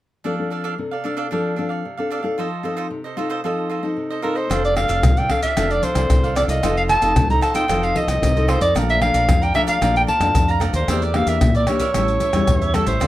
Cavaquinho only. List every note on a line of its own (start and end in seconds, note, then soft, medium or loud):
0.24 0.49 D4 medium
0.24 0.50 A4 medium
0.24 0.50 D5 medium
0.24 0.51 F5 medium
0.50 0.63 D4 soft
0.50 0.63 A4 soft
0.50 0.63 D5 soft
0.50 0.64 F5 soft
0.64 0.73 D4 medium
0.64 0.73 A4 medium
0.64 0.74 D5 medium
0.64 0.74 F5 medium
0.91 1.03 A4 soft
0.91 1.04 D5 soft
0.91 1.04 F5 soft
1.04 1.15 D4 soft
1.04 1.16 A4 medium
1.04 1.16 D5 medium
1.04 1.17 F5 medium
1.17 1.26 D4 medium
1.17 1.26 A4 medium
1.17 1.27 D5 medium
1.17 1.27 F5 medium
1.31 1.55 D4 medium
1.31 1.56 A4 medium
1.31 1.56 D5 medium
1.31 1.57 F5 medium
1.56 1.69 D4 soft
1.56 1.70 A4 soft
1.56 1.69 D5 soft
1.56 1.68 F5 soft
1.69 1.97 A4 soft
1.69 1.96 D5 soft
1.69 1.96 F5 soft
1.98 2.10 A4 soft
1.98 2.10 D5 soft
1.98 2.10 F5 soft
2.10 2.23 D4 medium
2.10 2.23 A4 soft
2.10 2.23 D5 medium
2.10 2.21 F5 medium
2.23 2.37 A4 soft
2.23 2.36 D5 soft
2.23 2.36 F5 soft
2.38 2.62 F4 medium
2.38 2.63 A4 medium
2.38 2.64 C5 medium
2.38 2.64 D#5 medium
2.63 2.75 F4 soft
2.63 2.76 A4 soft
2.63 2.76 C5 medium
2.63 2.77 D#5 medium
2.76 2.86 F4 soft
2.76 2.86 A4 medium
2.76 2.86 C5 medium
2.76 2.87 D#5 medium
3.04 3.17 A4 soft
3.04 3.17 C5 soft
3.04 3.16 D#5 soft
3.17 3.28 F4 medium
3.17 3.29 A4 medium
3.17 3.29 C5 medium
3.17 3.30 D#5 medium
3.30 3.39 F4 medium
3.30 3.39 A4 medium
3.30 3.40 C5 medium
3.30 3.40 D#5 medium
3.44 3.68 F4 medium
3.44 3.69 A4 medium
3.44 3.70 C5 medium
3.44 3.70 D#5 medium
3.69 3.82 F4 soft
3.69 3.83 A4 soft
3.69 3.83 C5 soft
3.69 3.82 D#5 soft
3.83 4.10 A4 soft
3.83 4.09 C5 soft
3.83 4.09 D#5 soft
4.10 4.22 A4 soft
4.10 4.22 C5 soft
4.10 4.23 D#5 soft
4.22 4.35 F4 medium
4.22 4.36 A4 medium
4.22 4.35 C5 medium
4.22 4.34 D#5 medium
4.35 4.49 A4 soft
4.35 4.49 C5 soft
4.35 4.48 D#5 soft
4.50 4.74 D4 medium
4.50 4.75 A4 medium
4.50 4.76 D5 medium
4.50 4.76 F5 medium
4.76 4.87 D4 soft
4.76 4.87 A4 soft
4.76 4.88 D5 medium
4.76 4.88 F5 medium
4.88 4.98 D4 medium
4.88 4.98 A4 medium
4.88 4.99 D5 medium
4.88 4.99 F5 medium
5.17 5.29 A4 soft
5.17 5.30 D5 soft
5.17 5.29 F5 soft
5.29 5.41 D4 medium
5.29 5.42 A4 medium
5.29 5.42 D5 medium
5.29 5.42 F5 medium
5.42 5.52 D4 medium
5.42 5.52 A4 medium
5.42 5.52 D5 medium
5.42 5.52 F5 medium
5.57 5.81 D4 medium
5.57 5.82 A4 medium
5.57 5.83 D5 medium
5.57 5.83 F5 medium
5.83 5.95 D4 soft
5.83 5.96 A4 soft
5.83 5.95 D5 medium
5.83 5.94 F5 medium
5.96 6.23 A4 soft
5.96 6.22 D5 soft
5.96 6.22 F5 soft
6.23 6.35 A4 soft
6.23 6.35 D5 soft
6.23 6.35 F5 soft
6.35 6.48 D4 medium
6.35 6.48 A4 medium
6.35 6.48 D5 medium
6.35 6.47 F5 medium
6.48 6.62 A4 soft
6.48 6.62 D5 soft
6.48 6.61 F5 soft
6.63 6.87 F4 medium
6.63 6.88 A4 medium
6.63 6.89 C5 medium
6.63 6.89 D#5 medium
6.88 7.00 F4 soft
6.88 7.01 A4 medium
6.88 7.01 C5 medium
6.88 7.02 D#5 medium
7.01 7.11 F4 medium
7.01 7.12 A4 medium
7.01 7.12 C5 medium
7.01 7.12 D#5 medium
7.30 7.41 A4 soft
7.30 7.42 C5 soft
7.30 7.42 D#5 soft
7.41 7.53 F4 medium
7.41 7.53 A4 medium
7.41 7.54 C5 medium
7.41 7.54 D#5 medium
7.54 7.64 F4 medium
7.54 7.64 A4 medium
7.54 7.65 C5 medium
7.54 7.65 D#5 medium
7.68 7.94 F4 medium
7.68 7.94 A4 medium
7.68 7.95 C5 medium
7.68 7.95 D#5 medium
7.95 8.08 F4 soft
7.95 8.08 A4 soft
7.95 8.07 C5 soft
7.95 8.06 D#5 medium
8.08 8.35 A4 soft
8.08 8.34 C5 soft
8.08 8.34 D#5 soft
8.36 8.47 A4 soft
8.36 8.48 C5 soft
8.36 8.48 D#5 soft
8.48 8.61 F4 medium
8.48 8.61 A4 medium
8.48 8.61 C5 medium
8.48 8.59 D#5 medium
8.61 8.73 A4 soft
8.61 8.74 C5 soft
8.61 8.74 D#5 medium
8.75 8.99 A4 medium
8.75 9.00 D5 medium
8.75 9.01 F5 medium
8.75 9.01 A#5 medium
9.01 9.13 A4 soft
9.01 9.13 D5 medium
9.01 9.13 F5 soft
9.01 9.14 A#5 medium
9.14 9.24 A4 medium
9.14 9.24 D5 medium
9.14 9.24 F5 medium
9.14 9.24 A#5 medium
9.42 9.54 D5 soft
9.42 9.54 F5 soft
9.42 9.54 A#5 soft
9.54 9.66 A4 medium
9.54 9.66 D5 medium
9.54 9.66 F5 medium
9.54 9.67 A#5 medium
9.67 9.77 A4 medium
9.67 9.77 D5 medium
9.67 9.77 F5 medium
9.67 9.77 A#5 medium
9.81 10.06 A4 medium
9.81 10.07 D5 medium
9.81 10.08 F5 medium
9.81 10.08 A#5 medium
10.07 10.20 A4 soft
10.07 10.21 D5 soft
10.07 10.20 F5 medium
10.07 10.19 A#5 soft
10.20 10.47 D5 soft
10.20 10.47 F5 soft
10.20 10.46 A#5 soft
10.48 10.60 D5 soft
10.48 10.60 F5 soft
10.48 10.60 A#5 medium
10.60 10.73 A4 medium
10.60 10.73 D5 medium
10.60 10.73 F5 medium
10.60 10.72 A#5 medium
10.73 10.87 D5 soft
10.73 10.86 A#5 soft
10.88 11.13 G4 medium
10.88 11.14 A#4 medium
10.88 11.15 D5 medium
10.88 11.14 E5 medium
11.14 11.26 G4 soft
11.14 11.27 A#4 soft
11.14 11.28 D5 soft
11.14 11.27 E5 soft
11.28 11.37 G4 medium
11.28 11.37 A#4 medium
11.28 11.37 D5 medium
11.28 11.37 E5 medium
11.55 11.67 A#4 soft
11.55 11.67 D5 soft
11.55 11.67 E5 soft
11.67 11.78 G4 medium
11.67 11.79 A#4 medium
11.67 11.79 D5 medium
11.67 11.79 E5 medium
11.80 11.89 G4 medium
11.80 11.90 A#4 medium
11.80 11.90 D5 medium
11.80 11.90 E5 medium
11.94 12.19 G4 medium
11.94 12.20 A4 medium
11.94 12.21 C#5 medium
11.94 12.21 E5 medium
12.20 12.33 G4 soft
12.20 12.34 A4 soft
12.20 12.33 C#5 soft
12.20 12.32 E5 medium
12.34 12.61 A4 soft
12.34 12.60 C#5 soft
12.34 12.60 E5 soft
12.61 12.73 A4 soft
12.61 12.74 C#5 soft
12.61 12.73 E5 soft
12.74 12.86 G4 medium
12.74 12.87 A4 medium
12.74 12.86 C#5 medium
12.74 12.85 E5 medium
12.86 13.00 A4 soft
12.86 13.00 C#5 soft
12.86 12.99 E5 soft
13.00 13.07 F4 medium
13.00 13.07 A4 medium
13.00 13.07 C5 medium
13.00 13.07 D5 medium